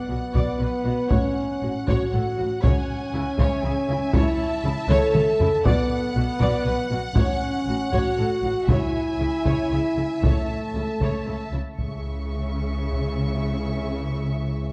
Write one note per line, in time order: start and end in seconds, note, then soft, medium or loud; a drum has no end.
0.00 1.07 B3 medium
0.00 2.59 F#5 medium
0.00 3.35 F#5 medium
0.09 0.17 B1 soft
0.09 0.17 B2 soft
0.09 0.18 F#4 soft
0.34 0.42 B1 medium
0.34 0.43 B2 medium
0.34 0.59 D5 medium
0.34 taiko medium
0.60 0.68 B1 soft
0.60 0.68 B2 soft
0.60 0.69 B4 soft
0.85 0.93 B1 soft
0.85 0.93 B2 soft
0.85 0.93 F#4 soft
1.10 1.19 A1 medium
1.10 1.18 A2 medium
1.10 1.87 C#4 medium
1.10 1.34 C#5 medium
1.10 taiko medium
1.62 1.71 A1 soft
1.62 1.70 A2 soft
1.62 1.71 F#4 soft
1.88 1.96 A1 medium
1.88 1.96 A2 medium
1.88 2.64 F#4 medium
1.88 2.12 C#5 medium
1.88 taiko medium
2.13 2.21 A1 soft
2.13 2.21 A2 soft
2.13 2.21 A4 soft
2.38 2.47 A1 soft
2.38 2.47 A2 soft
2.38 2.46 F#4 soft
2.63 2.72 C#2 medium
2.63 2.72 C#3 medium
2.63 4.11 C#4 medium
2.63 2.87 C#5 medium
2.63 4.12 G#5 medium
2.63 taiko medium
3.14 3.22 C#2 medium
3.14 3.22 C#3 soft
3.14 3.22 E4 soft
3.38 3.47 C#2 medium
3.38 3.46 C#3 medium
3.38 3.63 C#5 medium
3.38 5.66 E5 medium
3.38 taiko medium
3.63 3.71 C#2 medium
3.63 3.72 C#3 medium
3.63 3.73 G#4 medium
3.89 3.97 C#2 medium
3.89 3.97 C#3 medium
3.89 3.97 E4 medium
4.13 4.22 C#2 medium
4.13 4.22 C#3 medium
4.13 4.89 E4 medium
4.13 4.38 C#5 medium
4.13 5.66 A5 medium
4.13 taiko loud
4.64 4.72 C#2 medium
4.64 4.72 C#3 medium
4.64 4.73 E4 medium
4.90 4.98 C#2 medium
4.90 4.98 C#3 medium
4.90 5.64 A4 medium
4.90 5.14 C#5 medium
4.90 taiko mid medium
5.15 5.23 C#2 medium
5.15 5.23 C#3 medium
5.15 5.24 A4 medium
5.15 taiko mid medium
5.40 5.48 C#2 medium
5.40 5.48 C#3 medium
5.40 5.48 E4 medium
5.40 taiko low medium
5.65 5.74 B1 medium
5.65 5.74 B2 medium
5.65 6.99 B3 medium
5.65 5.89 D5 medium
5.65 8.65 F#5 medium
5.65 taiko loud
6.16 6.24 B1 medium
6.16 6.24 B2 medium
6.16 6.24 F#4 medium
6.40 6.49 B1 medium
6.40 6.49 B2 medium
6.40 6.64 D5 medium
6.40 taiko medium
6.65 6.74 B1 medium
6.65 6.74 B2 medium
6.65 6.73 B4 medium
6.91 6.99 B1 medium
6.91 6.99 B2 medium
6.91 6.99 F#4 medium
7.15 7.23 A1 medium
7.15 7.24 A2 medium
7.15 7.91 C#4 medium
7.15 7.40 C#5 medium
7.15 taiko medium
7.67 7.75 A1 medium
7.67 7.76 A2 soft
7.67 7.76 F#4 medium
7.92 8.00 A1 medium
7.92 8.02 A2 medium
7.92 8.68 F#4 medium
7.92 8.17 C#5 medium
7.92 taiko medium
8.18 8.26 A1 soft
8.18 8.27 A2 medium
8.18 8.26 A4 medium
8.43 8.51 A1 soft
8.43 8.52 A2 soft
8.43 8.52 F#4 soft
8.68 8.76 C#2 medium
8.68 8.77 C#3 medium
8.68 10.23 E4 medium
8.68 8.93 C#5 medium
8.68 11.54 E5 medium
8.68 10.23 G#5 medium
8.68 taiko medium
9.19 9.27 C#2 soft
9.19 9.28 C#3 soft
9.19 9.28 E4 soft
9.45 9.53 C#2 medium
9.45 9.53 C#3 medium
9.45 9.69 C#5 medium
9.45 taiko medium
9.70 9.78 C#2 soft
9.70 9.80 C#3 soft
9.70 9.80 G#4 soft
9.97 10.05 C#2 soft
9.97 10.05 C#3 soft
9.97 10.05 E4 soft
10.23 10.31 C#2 soft
10.23 10.31 C#3 soft
10.23 11.53 A3 medium
10.23 10.48 C#5 soft
10.23 11.56 A5 soft
10.23 taiko medium
10.74 10.82 C#2 soft
10.74 10.83 C#3 soft
10.74 10.84 E4 soft
11.00 11.08 C#2 soft
11.00 11.09 C#3 soft
11.00 11.26 C#5 medium
11.00 taiko medium
11.26 11.34 C#2 soft
11.26 11.34 C#3 soft
11.26 11.36 A4 soft
11.52 11.60 C#2 soft
11.52 11.61 C#3 soft
11.52 11.62 E4 soft
11.77 14.72 C#2 soft
11.77 14.72 C#3 soft
11.77 14.72 C#4 soft
11.77 14.72 E4 soft
11.77 14.72 G#4 soft
11.77 14.72 E5 soft
11.77 14.72 C#6 soft
11.77 taiko soft
12.93 taiko soft